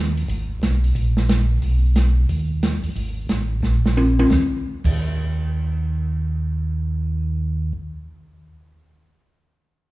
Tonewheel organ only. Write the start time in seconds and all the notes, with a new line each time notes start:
Already playing: D#2
0.29 G#1
0.62 B1
0.95 A#1
1.62 B1
2.29 D#2
2.83 D#2
2.96 G#1
3.30 A1
3.63 A#1
4.30 D#2
4.84 D#2